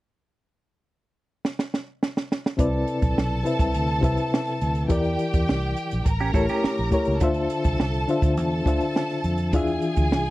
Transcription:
1.45 snare
1.59 snare
1.74 snare
2.03 snare
2.17 snare
2.32 snare
2.46 snare
2.57 fingered electric bass C2, reed electric piano C3 C4 E4 B4 D5, violin section A4 A5, kick, closed hi-hat
2.87 closed hi-hat
3.02 fingered electric bass B1, kick, closed hi-hat
3.18 fingered electric bass B1, snare
3.43 reed electric piano C3 C4 E4 B4 E5, closed hi-hat
3.59 fingered electric bass C2, kick, closed hi-hat
3.74 fingered electric bass D2, closed hi-hat
4.02 fingered electric bass C2, reed electric piano C3 C4 E4 B4 E5, kick, closed hi-hat
4.17 closed hi-hat
4.34 snare
4.47 snare, closed hi-hat
4.61 fingered electric bass D2, closed hi-hat
4.75 closed hi-hat
4.88 fingered electric bass E2, reed electric piano E3 E4 G4 A#4 D5, violin section G4 G5, kick, closed hi-hat
5.04 closed hi-hat
5.19 closed hi-hat
5.34 fingered electric bass E2, kick, closed hi-hat
5.49 fingered electric bass C2, snare
5.77 closed hi-hat
5.91 fingered electric bass A#1, closed hi-hat
6.06 fingered electric bass A1, violin section A#4 A#5, kick, closed hi-hat
6.20 clean electric guitar C#4 G4, closed hi-hat
6.32 fingered electric bass A1, reed electric piano A3 E4 G4 A#4 C#5, clean electric guitar E4 A4, kick, closed hi-hat
6.48 clean electric guitar C#4 G4, closed hi-hat
6.64 muted fingered electric bass stroke, snare
6.78 fingered electric bass A#1, closed hi-hat
6.91 reed electric piano A3 E4 G4 A#4 C#5, kick, closed hi-hat
7.05 fingered electric bass C#2, closed hi-hat
7.20 fingered electric bass D2, reed electric piano D3 D4 F4 C5 E5, violin section A4 A5, kick, closed hi-hat
7.34 closed hi-hat
7.50 closed hi-hat
7.64 fingered electric bass C2, kick, closed hi-hat
7.80 fingered electric bass C2, snare
7.93 closed hi-hat
8.08 reed electric piano D3 D4 F4 C5 E5, closed hi-hat
8.22 fingered electric bass D2, kick, closed hi-hat
8.37 fingered electric bass E2, violin section A4 A5, closed hi-hat
8.65 fingered electric bass D2, reed electric piano D3 D4 F4 C5 E5, kick, closed hi-hat
8.80 closed hi-hat
8.96 snare
9.10 snare, closed hi-hat
9.24 fingered electric bass F2, closed hi-hat
9.38 closed hi-hat
9.53 fingered electric bass E2, reed electric piano E3 D4 F4 G#4 E5, violin section G#4 G#5, kick, closed hi-hat
9.67 closed hi-hat
9.82 closed hi-hat
9.96 fingered electric bass D2, kick, closed hi-hat
10.12 fingered electric bass C2, snare

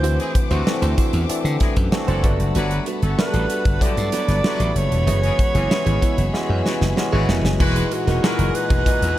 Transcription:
Already playing: slap bass D2, tine electric piano E3 A3 C4 D4 F#4, alto saxophone C5, string section C5 E5 F#5 D6
0.03 clean electric guitar E4 F#4 C5, closed hi-hat
0.19 horn section G#3 E4 G#4, muted clean electric guitar stroke, closed hi-hat
0.35 muted clean electric guitar stroke, kick, closed hi-hat
0.51 slap bass D2, horn section C3 A3 F#4, clean electric guitar E4 F#4 C5, closed hi-hat
0.66 tine electric piano E3 A3 C4 D4 F#4, snare
0.82 slap bass D2, clean electric guitar E4 F#4 C5, closed hi-hat
0.97 clean electric guitar E4 F#4 C5, kick, closed hi-hat
1.13 slap bass E2, muted clean electric guitar stroke, closed hi-hat
1.29 tine electric piano E3 A3 C4 D4 A4, muted clean electric guitar stroke, muted slap bass stroke, closed hi-hat
1.45 slap bass D3, muted clean electric guitar stroke, closed hi-hat
1.60 horn section G#3 E4 G#4, kick, snare, closed hi-hat
1.76 slap bass F#2, muted clean electric guitar stroke, kick, closed hi-hat
1.92 tine electric piano E3 A3 C4 D4 F#4, muted clean electric guitar stroke, snare
2.08 slap bass F#1, horn section F#3 D4 A4, clean electric guitar E4 F#4 C5, closed hi-hat
2.23 slap bass G1, tine electric piano G3 A3 B3 D4 F#4, clean electric guitar B3 F#4 B4, string section A4 A5 B5, kick, closed hi-hat
2.40 slap bass F#1, muted clean electric guitar stroke, closed hi-hat
2.55 slap bass G1, horn section F#3 D4 B4, clean electric guitar B3 F#4 A4, closed hi-hat
2.71 muted clean electric guitar stroke, closed hi-hat
2.86 clean electric guitar B3 F#4 B4, closed hi-hat
3.02 slap bass G1, clean electric guitar B3 F#4 A4, horn section C#4 A4 C#5, closed hi-hat
3.18 horn section F#3 D4 B4, tine electric piano G3 A3 B3 D4 F#4, alto saxophone B4, muted clean electric guitar stroke, snare
3.33 slap bass A1, clean electric guitar B3 F#4 A4, closed hi-hat
3.49 clean electric guitar B3 F#4 A4, closed hi-hat
3.65 slap bass G1, kick, closed hi-hat
3.81 horn section D3 B3 G4, tine electric piano F#3 A3 B3 D4 E4, alto saxophone D5, muted clean electric guitar stroke, kick, closed hi-hat
3.97 slap bass G2, muted clean electric guitar stroke, closed hi-hat
4.12 horn section F#3 D4 B4, clean electric guitar B3 F#4 A4, snare, closed hi-hat
4.28 slap bass G1, muted clean electric guitar stroke, snare, closed hi-hat
4.43 horn section F#3 D4 B4, tine electric piano G3 A3 B3 D4 F#4, snare
4.60 slap bass A1, muted clean electric guitar stroke, closed hi-hat
4.75 slap bass F#1, alto saxophone C#5, closed hi-hat
4.91 slap bass E1, muted clean electric guitar stroke, closed hi-hat
5.07 slap bass F#1, tine electric piano E3 G#3 B3 C#4 F#4, clean electric guitar B3 E4 G#4, string section G#4 E5, closed hi-hat
5.23 horn section E3 C#4 G#4, muted clean electric guitar stroke, closed hi-hat
5.38 muted clean electric guitar stroke, kick, closed hi-hat
5.54 slap bass F#1, horn section E3 C#4 G#4, clean electric guitar B3 E4 G#4, closed hi-hat
5.70 tine electric piano E3 G#3 B3 C#4 E4, snare
5.86 slap bass G#1, clean electric guitar B3 E4 G#4, closed hi-hat
6.02 clean electric guitar B3 E4 G#4, kick, closed hi-hat
6.17 slap bass F#1, muted clean electric guitar stroke, closed hi-hat
6.33 tine electric piano E3 G#3 B3 C#4 F#4, muted clean electric guitar stroke, snare
6.50 slap bass F#2, muted clean electric guitar stroke
6.65 horn section C#3 B3 F#4, snare
6.81 slap bass F#1, muted clean electric guitar stroke, snare
6.96 tine electric piano E3 G#3 B3 C#4 F#4, muted clean electric guitar stroke, snare
7.12 slap bass G#1, horn section C#3 B3 F#4, clean electric guitar B3 E4 G#4
7.28 slap bass E1, clean electric guitar B3 E4 A#4, snare
7.44 slap bass F#1, muted clean electric guitar stroke, snare
7.60 slap bass E1, tine electric piano A#2 E3 G#3 D#4 F#4, horn section G#3 F#4 B4, clean electric guitar A#3 D#4 G#4, string section G#4 D#5 F#5 A#5, alto saxophone B4, kick, crash
7.76 muted clean electric guitar stroke, closed hi-hat
7.91 alto saxophone F#4, muted clean electric guitar stroke, closed hi-hat
8.07 slap bass E1, clean electric guitar A#3 D#4 A#4, horn section C#4 A#4 C#5, snare, closed hi-hat
8.23 tine electric piano A#2 E3 G#3 D#4 F#4, horn section G#3 F#4 B4, clean electric guitar A#3 D#4 G#4, alto saxophone A#4, snare
8.39 slap bass F#1, muted clean electric guitar stroke, closed hi-hat
8.55 alto saxophone B4, muted clean electric guitar stroke, closed hi-hat
8.70 slap bass E1, clean electric guitar A#3 D#4 G#4, kick, closed hi-hat
8.86 tine electric piano A#2 E3 G#3 D#4 F#4, clean electric guitar A#3 D#4 G#4, kick, closed hi-hat
9.02 slap bass E2, muted clean electric guitar stroke, closed hi-hat

